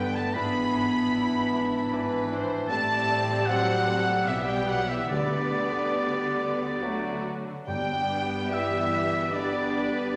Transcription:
0.00 0.25 G1 medium
0.00 0.26 G2 medium
0.00 0.34 D3 medium
0.00 0.17 G3 medium
0.00 0.37 B3 medium
0.00 0.36 B4 medium
0.00 0.15 G5 medium
0.00 0.17 G5 medium
0.13 0.35 A5 medium
0.17 0.36 A3 medium
0.17 0.36 A5 medium
0.33 1.03 G#1 medium
0.33 1.04 G#2 medium
0.33 0.43 D4 medium
0.33 2.68 D4 soft
0.33 0.42 E4 medium
0.33 2.31 B5 medium
0.37 1.91 E3 medium
0.37 2.30 B3 medium
0.37 1.13 G#4 medium
0.37 2.29 B5 medium
0.74 0.82 D4 soft
0.74 0.82 E4 medium
1.13 1.83 G#1 medium
1.13 1.83 G#2 medium
1.13 1.22 D4 soft
1.13 1.22 E4 medium
1.13 1.92 E4 medium
1.53 1.61 D4 soft
1.53 1.61 E4 soft
1.92 2.61 G#1 medium
1.92 2.61 G#2 medium
1.92 2.72 E3 medium
1.92 2.00 D4 medium
1.92 2.00 E4 medium
1.92 2.32 B4 medium
2.30 2.39 D4 medium
2.30 2.38 E4 medium
2.30 2.71 C5 medium
2.68 4.24 A1 medium
2.68 4.23 A2 medium
2.68 4.28 G3 medium
2.68 3.43 A3 medium
2.68 4.23 C4 medium
2.68 4.24 C4 medium
2.68 4.23 G4 medium
2.68 3.47 A5 medium
2.68 3.44 A5 loud
2.68 3.50 A5 medium
2.73 3.48 D5 medium
3.46 4.28 F#3 medium
3.46 3.89 C5 medium
3.46 4.29 F#5 medium
3.46 4.28 F#5 loud
3.46 4.30 F#5 medium
3.87 4.28 A4 medium
4.26 5.10 B1 medium
4.26 5.11 B2 medium
4.26 4.47 E3 medium
4.26 4.81 G3 medium
4.26 5.08 B3 medium
4.26 4.81 B3 medium
4.26 5.08 G4 medium
4.26 5.11 G4 medium
4.26 4.49 E5 medium
4.26 4.48 E5 medium
4.26 4.52 E5 medium
4.47 4.68 G3 medium
4.47 4.70 G5 medium
4.47 4.69 G5 medium
4.47 4.72 G5 medium
4.68 4.89 F#3 medium
4.68 4.90 F#5 medium
4.68 4.92 F#5 medium
4.88 5.11 E3 medium
4.88 5.10 E5 medium
4.88 5.09 E5 medium
4.88 5.11 E5 medium
5.09 6.80 D2 medium
5.09 6.37 D3 medium
5.09 7.26 D3 medium
5.09 6.81 D3 medium
5.09 6.85 G3 medium
5.09 6.80 B3 medium
5.09 6.84 B3 medium
5.09 6.80 G4 medium
5.09 7.22 B4 medium
5.09 7.21 D5 medium
5.09 7.22 D5 medium
6.82 7.45 D2 medium
6.82 7.46 D3 soft
6.82 7.35 F#3 medium
6.82 7.34 A3 soft
6.82 7.47 A3 medium
6.82 7.47 F#4 medium
7.66 10.14 G1 medium
7.66 8.88 G2 medium
7.66 10.14 G2 soft
7.66 8.47 G3 medium
7.66 9.28 G3 medium
7.66 9.28 B3 medium
7.66 9.29 B3 medium
7.66 8.47 D4 medium
7.66 8.47 G5 medium
7.66 8.55 G5 medium
7.66 8.48 G5 medium
8.49 9.31 E3 medium
8.49 9.28 G4 medium
8.49 10.15 G4 medium
8.49 9.33 E5 medium
8.53 9.35 E5 medium
8.53 9.32 E5 medium
9.31 10.16 D3 medium
9.31 10.16 G3 medium
9.31 10.16 B3 medium
9.31 10.16 D4 medium
9.31 9.74 B4 medium
9.31 10.16 D5 medium
9.36 10.16 D5 medium
9.76 10.16 B4 medium

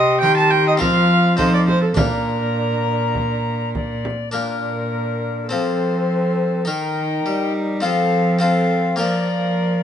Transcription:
0.00 0.19 C3 medium
0.00 0.24 C3 medium
0.00 0.76 C4 medium
0.00 0.81 G4 medium
0.00 0.77 C5 medium
0.00 0.21 D#5 loud
0.00 0.22 C6 medium
0.21 0.82 D#3 medium
0.21 0.77 D#3 medium
0.21 0.36 G5 loud
0.21 1.66 C6 medium
0.37 0.52 A5 medium
0.51 0.66 G5 loud
0.68 0.74 D#5 loud
0.77 1.35 F3 medium
0.77 1.38 F3 medium
0.77 1.36 C4 medium
0.77 1.40 F4 medium
0.77 1.37 A#4 medium
0.77 1.38 F5 loud
0.77 frame drum medium
1.37 1.97 F3 medium
1.37 1.94 F3 medium
1.37 1.95 C4 medium
1.37 1.77 D#4 medium
1.37 1.96 A4 medium
1.37 1.54 C5 medium
1.37 frame drum medium
1.54 1.60 D5 medium
1.68 1.81 C5 medium
1.68 frame drum soft
1.82 1.88 A4 medium
1.94 4.09 A#2 medium
1.94 4.10 A#2 medium
1.94 4.28 D4 soft
1.94 4.00 D4 medium
1.94 4.29 A#4 soft
1.94 4.00 A#4 medium
1.94 3.70 A#5 medium
1.94 frame drum medium
3.15 frame drum soft
3.74 4.29 D5 medium
3.74 frame drum medium
4.05 frame drum soft
4.32 5.51 A#2 medium
4.32 5.47 A#2 soft
4.32 5.46 D4 soft
4.32 5.52 D4 medium
4.32 5.47 A#4 medium
4.32 5.46 A#4 soft
4.32 5.46 A#4 medium
5.49 6.69 F3 medium
5.49 6.65 F3 soft
5.49 6.64 C4 soft
5.49 6.67 C4 medium
5.49 6.68 A4 soft
5.49 6.64 A4 soft
5.49 6.65 C5 medium
6.65 7.25 D#3 medium
6.65 7.22 D#3 soft
6.65 7.79 D#4 soft
6.65 7.81 D#4 medium
6.65 7.83 A#4 medium
6.65 7.80 A#4 soft
6.65 7.53 G5 medium
7.25 7.84 G3 medium
7.25 7.80 G3 soft
7.81 8.99 F3 medium
7.81 8.96 F3 medium
7.81 8.38 C4 soft
7.81 8.41 C4 medium
7.81 8.39 F4 soft
7.81 8.40 A4 soft
7.81 8.41 A4 medium
7.81 8.40 F5 loud
8.39 8.96 C4 soft
8.39 8.96 F4 soft
8.39 8.98 A4 medium
8.39 8.99 A4 medium
8.39 8.98 F5 medium
8.43 8.99 C4 medium
8.96 9.83 F3 medium
8.96 9.83 A#3 soft
8.96 9.83 F4 soft
8.96 9.83 A#4 soft
8.96 9.83 D5 medium
9.01 9.83 A#3 medium
9.01 9.83 A#4 medium

